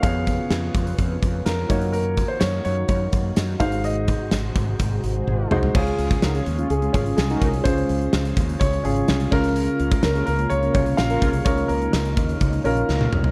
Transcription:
0.03 fretless electric bass F2, string machine C#3 B3 F4, grand piano B3 F4 G#4 C#5 F5, kick, closed hi-hat
0.27 kick, closed hi-hat
0.50 fretless electric bass F2, snare, closed hi-hat
0.75 fretless electric bass F2, kick, closed hi-hat
0.87 closed hi-hat
0.98 fretless electric bass F2, kick, closed hi-hat
1.22 fretless electric bass F2, kick, closed hi-hat
1.46 fretless electric bass F2, grand piano A#4, snare, closed hi-hat
1.69 fretless electric bass F#2, string machine D#3 A#3 F#4, grand piano A#3 D#4 F#4 C#5, kick, closed hi-hat
1.81 closed hi-hat
1.93 grand piano A#4, closed hi-hat
2.17 kick, closed hi-hat
2.28 grand piano C5
2.40 fretless electric bass F#2, grand piano C#5, snare, closed hi-hat, tambourine
2.65 fretless electric bass F#2, grand piano C#5, closed hi-hat
2.88 fretless electric bass F#2, grand piano C#5, kick, closed hi-hat
3.13 fretless electric bass F#2, kick, closed hi-hat
3.36 fretless electric bass F#2, snare, closed hi-hat, tambourine
3.59 fretless electric bass G#1, grand piano G#2 G#3 D#4 F#4 C5 F5, string machine C3 G#3, kick, closed hi-hat
3.72 closed hi-hat
3.84 grand piano D#5, closed hi-hat
4.08 kick, closed hi-hat
4.31 fretless electric bass G#1, snare, closed hi-hat, tambourine
4.55 fretless electric bass G#1, kick, closed hi-hat
4.79 fretless electric bass G#1, kick, closed hi-hat
4.91 analog polysynth F#4 G#4 C5
5.03 fretless electric bass G#1, closed hi-hat
5.15 analog polysynth F#4 G#4 C5
5.27 fretless electric bass G#1, high tom
5.51 fretless electric bass C2, grand piano G#3 D#4 F#4 C5, mid tom
5.63 floor tom
5.75 fretless electric bass C#2, grand piano C#3 C#4 F4 G#4, string machine C#3 G#3 F4, kick, crash
5.87 closed hi-hat
5.99 fretless electric bass C#2, closed hi-hat
6.11 analog polysynth F4 G#4 C#5, kick, closed hi-hat
6.22 fretless electric bass C#2, analog polysynth D#4 F#4 A#4, snare, tambourine
6.34 analog polysynth C#4 F4 G#4, closed hi-hat
6.46 fretless electric bass D#2, closed hi-hat
6.58 analog polysynth G#3 C#4 F4, closed hi-hat
6.70 fretless electric bass C#2, grand piano G#4, closed hi-hat
6.82 analog polysynth G#3 C#4 F4, closed hi-hat
6.93 fretless electric bass G#1, grand piano C#4 F4 G#4, analog polysynth C#4 F4 G#4, kick, closed hi-hat
7.06 closed hi-hat
7.17 fretless electric bass C2, grand piano G#4, snare, tambourine
7.30 analog polysynth D#4 F#4 A#4, closed hi-hat
7.42 fretless electric bass C2, kick, closed hi-hat
7.54 closed hi-hat
7.64 fretless electric bass C#2, grand piano C#3 C#4 F4 G#4 C5, kick, closed hi-hat
7.78 closed hi-hat
7.89 fretless electric bass C#2, closed hi-hat
8.02 closed hi-hat
8.13 fretless electric bass C#2, snare, tambourine
8.25 closed hi-hat
8.37 fretless electric bass D#2, kick, closed hi-hat
8.49 closed hi-hat
8.60 fretless electric bass C#2, grand piano C#5, kick, closed hi-hat
8.73 closed hi-hat
8.84 fretless electric bass G#1, grand piano C#4 F4 G#4, closed hi-hat
8.96 closed hi-hat
9.08 fretless electric bass C2, snare, tambourine
9.20 closed hi-hat
9.31 fretless electric bass C#2, grand piano C#3 C#4 F4 A#4, string machine A#3, kick, crash
9.44 closed hi-hat
9.56 closed hi-hat
9.68 closed hi-hat
9.80 fretless electric bass C#2, closed hi-hat
9.91 analog polysynth F4 A#4 C#5, kick, closed hi-hat
10.02 fretless electric bass C#2, analog polysynth C#4 F4 A#4, grand piano A#4, snare, tambourine
10.15 analog polysynth C#4 F4 G#4, closed hi-hat
10.26 fretless electric bass C#2, grand piano A#4, closed hi-hat
10.38 analog polysynth A#3 C#4 F4, closed hi-hat
10.50 fretless electric bass C#2, grand piano C#5, closed hi-hat
10.62 analog polysynth A#3 C#4 F4, closed hi-hat
10.74 fretless electric bass C2, grand piano C#4 F4 C#5, analog polysynth C#4 F4 G#4, kick, closed hi-hat
10.86 closed hi-hat
10.97 fretless electric bass A#1, grand piano F5, snare, tambourine
11.10 analog polysynth C#4 F4 A#4, closed hi-hat
11.22 fretless electric bass C2, grand piano C#3, string machine D#4, kick, closed hi-hat
11.33 closed hi-hat
11.45 fretless electric bass C#2, grand piano C#4 F4 A#4 C#5, kick, closed hi-hat
11.58 closed hi-hat
11.68 fretless electric bass C#2, grand piano A#4, closed hi-hat
11.82 closed hi-hat
11.92 fretless electric bass C#2, grand piano A#4, snare, tambourine
12.05 closed hi-hat
12.17 fretless electric bass D#2, kick, closed hi-hat
12.29 closed hi-hat
12.41 fretless electric bass C#2, kick, closed hi-hat
12.53 closed hi-hat
12.64 fretless electric bass A#1, grand piano C#4 F4 A#4, closed hi-hat
12.77 closed hi-hat
12.89 fretless electric bass C#2, snare
13.01 high tom
13.12 fretless electric bass C2, mid tom
13.24 floor tom

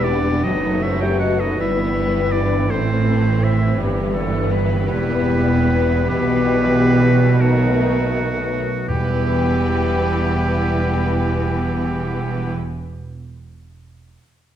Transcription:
Already playing: double bass section E1, timpani E2, cello section E2, harp E2 B3 B4, viola section G3, violin section B3
0.04 french horn section D4, harp G4, flute section B4, oboe D5
0.27 harp G5
0.42 double bass section F#1, cello section F#2, harp F#2, viola section F#3, violin section A3, french horn section D#4, clarinet F#4, flute section B4, oboe D#5
0.64 harp B3
0.83 french horn section E4, harp A4, flute section C5, oboe E5
1.01 french horn section G4, harp B4, flute section E5, oboe G5
1.19 french horn section F#4, harp A4, flute section D#5, oboe F#5
1.38 french horn section D#4, flute section B4, oboe D#5, harp A5
1.57 double bass section G1, harp G2, cello section G2, viola section E3, violin section G3 B3, french horn section E4, clarinet E4, flute section B4, oboe E5
1.78 harp B3
1.97 harp G4
2.16 harp B4
2.31 french horn section D4, harp G4, flute section B4, oboe D5
2.52 harp G5
2.68 double bass section A1, cello section A2, harp A2, violin section C4, french horn section C4, clarinet E4, flute section A4, oboe C5
2.72 violin section C4
2.88 harp C4
3.05 harp E4
3.25 harp A4
3.40 french horn section E4, flute section C5, harp C5, oboe E5
3.62 harp E5
3.78 double bass section G1, cello section G2, harp G2, violin section G3 B3, clarinet G4
3.98 harp B3
4.14 harp E4, clarinet A4
4.34 harp B4
4.51 harp E4, clarinet B4
4.70 harp E5
4.87 double bass section E1, cello section E2, harp E2, french horn section B3, clarinet E4, flute section G4, oboe B4
5.09 harp B3
5.29 harp E4
5.48 harp G4
5.70 harp B4
5.90 harp E5
6.07 double bass section B1, cello section B2, harp B2, viola section E3, french horn section B3, flute section G4, clarinet G4, oboe B4
6.30 harp B3
6.51 harp E4
6.73 harp G4
6.95 harp B4
7.18 harp E5
7.38 harp B2, viola section D#3, french horn section F#3, violin section A3, flute section D#4, clarinet D#4, oboe F#4
7.64 harp B3
7.88 harp D#4
8.13 harp A4
8.37 harp B4
8.64 harp D#5
8.86 double bass section E1, cello section E2, timpani E2, viola section E3, harp E3, french horn section G3, violin section B3 B4, clarinet E4, oboe G4, flute section G5
8.96 harp B3
9.03 harp E4
9.10 harp B4
9.18 harp E5

